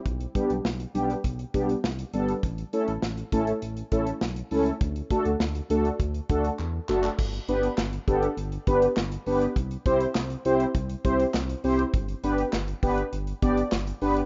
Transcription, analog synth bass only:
X:1
M:4/4
L:1/16
Q:1/4=101
K:G
V:1 name="Analog synth bass" clef=bass
B,,,2 z B,,, B,,,2 B,,,2 B,,,2 B,,,2 C,,2 G,,,2 | A,,,2 z A,,, A,,,2 A,,,2 A,,,2 A,,,2 B,,,2 ^C,,2 | D,,2 z D,, D,,2 D,,2 D,,2 D,,2 E,,2 F,,,2 | G,,,2 G,,,2 G,,,2 G,,,2 G,,,2 G,,,2 G,,,2 G,,,2 |
C,,2 C,,2 C,,2 C,,2 C,,2 C,,2 C,,2 C,,2 | G,,,2 G,,,2 G,,,2 G,,,2 G,,,2 G,,,2 G,,,2 G,,,2 |]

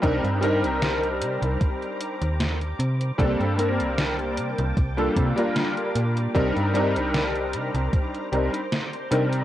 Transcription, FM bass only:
X:1
M:4/4
L:1/16
Q:"Swing 16ths" 1/4=76
K:Cdor
V:1 name="FM bass" clef=bass
C,, G,,2 C,,3 C, C,, z3 E,,3 C,2 | C,, G,,2 C,,3 C, C,, C,,2 C, z3 B,,2 | C,, G,,2 C,,3 C, C,, z2 C,, z3 C,2 |]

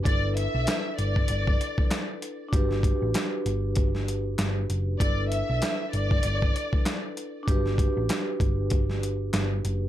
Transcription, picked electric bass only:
X:1
M:4/4
L:1/16
Q:"Swing 16ths" 1/4=97
K:G
V:1 name="Picked electric bass" clef=bass
G,,,3 B,,, z2 G,,,2 G,,,2 z6 | G,,,3 A,,, z2 G,,,6 G,,,2 F,,,2 | G,,,3 B,,, z2 G,,,2 G,,,2 z6 | G,,,3 A,,, z2 G,,,6 G,,,2 F,,,2 |]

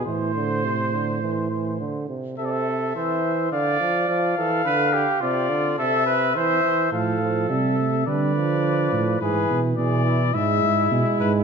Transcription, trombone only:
X:1
M:4/4
L:1/8
Q:1/4=105
K:Am
V:1 name="Trombone" clef=bass
E, D, C, D, E, E, D, C, | C,2 E,2 D, F, F, E, | D,2 C, D, C,2 E, E, | F, F, G, A, G, F,3 |
E,2 E,2 ^G,2 G,2 |]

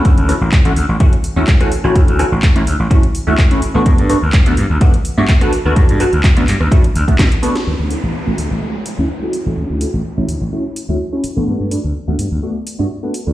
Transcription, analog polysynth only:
X:1
M:4/4
L:1/16
Q:1/4=126
K:D
V:1 name="Analog polysynth"
[A,CEF]2 [A,CEF] z2 [A,CEF] z2 [A,CEF] z2 [A,CEF] z [A,CEF] z [A,CEF]- | [A,CEF]2 [A,CEF] z2 [A,CEF] z2 [A,CEF] z2 [A,CEF] z [A,CEF] z [A,B,DF]- | [A,B,DF]2 [A,B,DF] z2 [A,B,DF] z2 [A,B,DF] z2 [A,B,DF] z [A,B,DF] z [A,B,DF]- | [A,B,DF]2 [A,B,DF] z2 [A,B,DF] z2 [A,B,DF] z2 [A,B,DF] z2 [A,B,DF] z |
z2 [A,CEF] z2 [A,CEF] z2 [A,CEF] z2 [A,CEF] z [A,CEF] z [A,CEF]- | [A,CEF]2 [A,CEF] z2 [A,CEF] z2 [A,CEF] z2 [A,CEF] z [A,CEF] z [A,B,DF]- | [A,B,DF]2 [A,B,DF] z2 [A,B,DF] z2 [A,B,DF] z2 [A,B,DF] z [A,B,DF] z [A,B,DF] |]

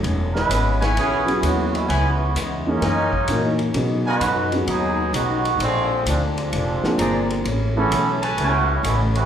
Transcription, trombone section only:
X:1
M:4/4
L:1/8
Q:"Swing" 1/4=130
K:E
V:1 name="Trombone section"
z [G,CEB]2 z [E,B,CG]2 [D,G,B,F] [G,B,CE] | [E,G,B,C]2 z [G,^A,CD]4 z | z [G,DFB]2 z [F,B,DG]2 [D,G,B,F]2 | [=D,^E,G,^B,]2 [E,G,B,=D] [E,G,B,D]4 z |
z [E,B,CA]2 z [E,B,CF]2 [G,B,CE] [E,B,^B,F] |]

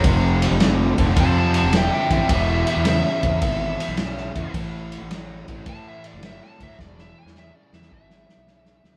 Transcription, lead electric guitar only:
X:1
M:4/4
L:1/8
Q:"Swing" 1/4=107
K:Ephr
V:1 name="Lead electric guitar"
z4 (3[ca] [ca] [ca] (3[eg] [eg] [eg] | (3[Ge] [Ge] [Ge] e6 | z4 (3a e d (3e a e | (3d e ^g (3e d e e4 |]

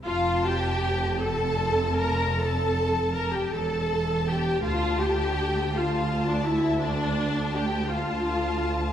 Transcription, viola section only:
X:1
M:12/8
L:1/16
Q:3/8=54
K:F
V:1 name="Viola section"
F2 G4 A4 B2 A4 B G A4 G2 | F2 G4 F3 D E2 D4 G2 F6 |]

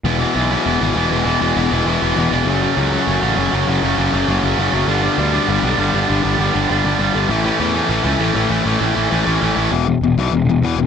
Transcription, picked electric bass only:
X:1
M:4/4
L:1/8
Q:1/4=199
K:Edor
V:1 name="Picked electric bass" clef=bass
E,,,2 B,,,2 E,,, ^G,,, E,,, E,,, | E,,, E,,, E,,, E,,, E,,, E,,, E,,, E,,, | F,,,2 C,,2 F,,, A,,, F,,, F,,, | F,,, F,,, F,,, F,,, F,,, F,,, F,,, F,,, |
G,,,2 D,,2 G,,, B,,, G,,, G,,, | G,,, G,,, G,,, G,,, G,,, G,,, G,,, G,,, | A,,,2 E,,2 A,,, C,, A,,, A,,, | A,,, A,,, A,,, A,,, A,,, A,,, A,,, A,,, |
E,,,2 E,,, B,,, E,,, E,,, E,, E,,, |]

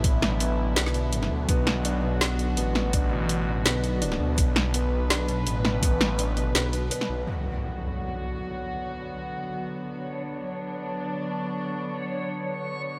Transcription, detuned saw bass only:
X:1
M:4/4
L:1/8
Q:"Swing 16ths" 1/4=166
K:Bm
V:1 name="Detuned saw bass" clef=bass
A,,,4 B,,,3 D,, | B,,,6 A,,,2- | A,,,4 B,,,3 D,, | B,,,6 A,,,2- |
A,,,4 B,,,2 z B,,, | z8 | z8 | z8 |
z8 |]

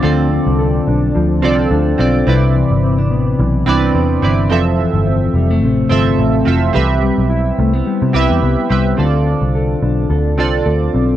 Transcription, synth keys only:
X:1
M:4/4
L:1/8
Q:"Swing 16ths" 1/4=107
K:Ddor
V:1 name="Synth keys"
[CFAd]4 z [CFAd]2 [CFAd] | [CEBd]4 z [CEBd]2 [CEBd] | [F,CAe]4 z [F,CAe]2 [CFAe] | [CGBe]4 z [CGBe]2 [CGBe] |
[CFAd]4 z [CFAd]3 |]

